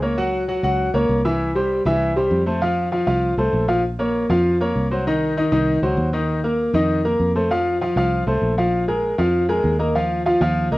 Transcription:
Already playing: fingered electric bass C#2
0.02 grand piano A#3 A#4 C#5
0.18 grand piano F#3 F#4 F#5
0.48 grand piano F#3 F#4 F#5
0.63 fingered electric bass C#2, grand piano F#3 F#4 F#5
0.94 fingered electric bass C#2, grand piano A#3 A#4 C#5
1.09 fingered electric bass C2
1.25 grand piano E3 E4 E5
1.55 grand piano G3 G4 C5
1.85 fingered electric bass C2, grand piano E3 E4 E5
2.16 grand piano G3 G4 C5
2.31 fingered electric bass F2
2.46 grand piano A3 A4 C5
2.62 grand piano F3 F4 F5
2.92 grand piano F3 F4 F5
3.07 fingered electric bass C2, grand piano F3 F4 F5
3.37 fingered electric bass C2, grand piano A3 A4 C5
3.53 fingered electric bass A#1
3.68 grand piano F3 F4 F5
3.99 grand piano A#3 A#4 C#5
4.29 fingered electric bass F2, grand piano F3 F4 F5
4.61 grand piano A#3 A#4 C#5
4.75 fingered electric bass C2
4.91 grand piano F#3 F#4 C5
5.07 grand piano D#3 D#4 D#5
5.37 grand piano D#3 D#4 D#5
5.52 fingered electric bass C2, grand piano D#3 D#4 D#5
5.82 fingered electric bass C#2, grand piano F#3 F#4 C5
5.97 fingered electric bass D#2
6.13 grand piano D#3 D#4 D#5
6.44 grand piano A#3 A#4
6.73 fingered electric bass F2, grand piano D#3 D#4 D#5
7.05 grand piano A#3 A#4
7.19 fingered electric bass F2
7.35 grand piano A3 A4 C5
7.51 grand piano F3 F4 F5
7.81 grand piano F3 F4 F5
7.96 fingered electric bass C2, grand piano F3 F4 F5
8.26 fingered electric bass C2, grand piano A3 A4 C5
8.41 fingered electric bass A#1
8.58 grand piano F3 F4 F5
8.88 grand piano G#3 G#4 A#4
9.18 fingered electric bass F2, grand piano F3 F4 F5
9.49 grand piano G#3 G#4 A#4
9.64 fingered electric bass D#2
9.79 grand piano A#3 A#4 D#5
9.95 grand piano F3 F4 F5
10.26 grand piano F3 F4 F5
10.41 fingered electric bass D#2, grand piano F3 F4 F5
10.71 fingered electric bass C#2, grand piano A#3 A#4 D#5

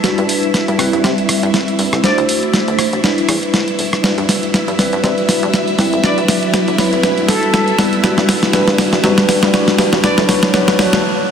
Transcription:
Already playing: string machine E4 E5
0.03 analog synth bass G2, tine electric piano G3 D4 F#4 B4, snare, closed hi-hat
0.18 analog synth bass G2, closed hi-hat
0.29 open hi-hat
0.43 closed hi-hat
0.54 snare, closed hi-hat
0.68 analog synth bass G2, closed hi-hat
0.78 analog synth bass C2, tine electric piano G3 C4 E4 B4, cross-stick, open hi-hat
0.93 analog synth bass G2, closed hi-hat
1.04 analog synth bass C3, snare, closed hi-hat
1.18 closed hi-hat
1.29 cross-stick, open hi-hat
1.43 analog synth bass G2, closed hi-hat
1.54 snare, closed hi-hat
1.68 closed hi-hat
1.79 analog synth bass G2, open hi-hat
1.93 analog synth bass C2, cross-stick, closed hi-hat
2.03 tine electric piano A3 D4 F#4 C5, trumpet section D5, snare, closed hi-hat
2.18 analog synth bass D2, closed hi-hat
2.29 open hi-hat
2.43 closed hi-hat
2.54 snare, closed hi-hat
2.68 analog synth bass D2, closed hi-hat
2.79 analog synth bass A1, cross-stick, open hi-hat
2.93 analog synth bass A1, closed hi-hat
3.03 tine electric piano G3 D4 E4 B4, snare, closed hi-hat
3.18 closed hi-hat
3.29 analog synth bass E2, cross-stick, open hi-hat
3.43 closed hi-hat
3.54 snare, closed hi-hat
3.68 closed hi-hat
3.79 analog synth bass E1, open hi-hat
3.93 cross-stick, closed hi-hat
4.03 tine electric piano G3 D4 F#4 B4, string machine E4 E5, snare, closed hi-hat
4.18 analog synth bass G2, closed hi-hat
4.29 snare, open hi-hat
4.43 closed hi-hat
4.54 snare, closed hi-hat
4.68 analog synth bass G2, closed hi-hat
4.78 analog synth bass C2, tine electric piano G3 C4 E4 B4, snare, open hi-hat
4.93 analog synth bass G2, closed hi-hat
5.03 analog synth bass C3, tine electric piano G3 D4 F#4 B4, snare, closed hi-hat
5.18 closed hi-hat
5.29 snare, open hi-hat
5.43 analog synth bass G2, closed hi-hat
5.54 snare, closed hi-hat
5.68 closed hi-hat
5.78 analog synth bass G2, tine electric piano G3 C4 E4 B4, snare, open hi-hat
5.93 analog synth bass C2, closed hi-hat
6.03 tine electric piano F#3 D4 F#4 B4, trumpet section D5, snare, closed hi-hat
6.18 analog synth bass D2, closed hi-hat
6.28 snare, open hi-hat
6.43 closed hi-hat
6.54 snare, closed hi-hat
6.68 analog synth bass D2, closed hi-hat
6.78 analog synth bass A1, tine electric piano F#3 C4 E4 B4, snare, open hi-hat
6.93 analog synth bass A1, closed hi-hat
7.03 tine electric piano G3 D4 F#4 B4, snare, closed hi-hat
7.18 closed hi-hat
7.28 analog synth bass E2, trumpet section A4, snare, open hi-hat
7.43 closed hi-hat
7.54 snare, closed hi-hat
7.68 closed hi-hat
7.78 analog synth bass E1, tine electric piano G3 B3 E4 B4, snare, open hi-hat
7.93 closed hi-hat
8.03 tine electric piano G3 D4 F#4 B4, snare, closed hi-hat
8.18 analog synth bass G2, snare, closed hi-hat
8.29 snare, open hi-hat
8.43 snare, closed hi-hat
8.53 tine electric piano G3 D4 F#4 B4, snare, closed hi-hat
8.68 analog synth bass G2, snare, closed hi-hat
8.78 analog synth bass C2, snare, open hi-hat
8.93 analog synth bass G2, snare, closed hi-hat
9.03 analog synth bass C3, tine electric piano G3 D4 F#4 B4, snare, closed hi-hat
9.18 snare, closed hi-hat
9.29 snare, open hi-hat
9.43 analog synth bass G2, snare, closed hi-hat
9.53 tine electric piano G3 D4 F#4 B4, snare, closed hi-hat
9.68 snare, closed hi-hat
9.79 analog synth bass G2, snare, open hi-hat
9.93 analog synth bass C2, snare, closed hi-hat
10.03 tine electric piano F#3 D4 F#4 B4, trumpet section D5, snare, closed hi-hat
10.18 analog synth bass D2, snare, closed hi-hat
10.28 tine electric piano F#3 D4 F#4 B4, snare, open hi-hat
10.43 snare, closed hi-hat
10.53 tine electric piano F#3 D4 F#4 B4, snare, closed hi-hat
10.68 analog synth bass D2, snare, closed hi-hat
10.78 tine electric piano F#3 D4 F#4 B4, snare, open hi-hat
10.93 analog synth bass A1, snare, closed hi-hat

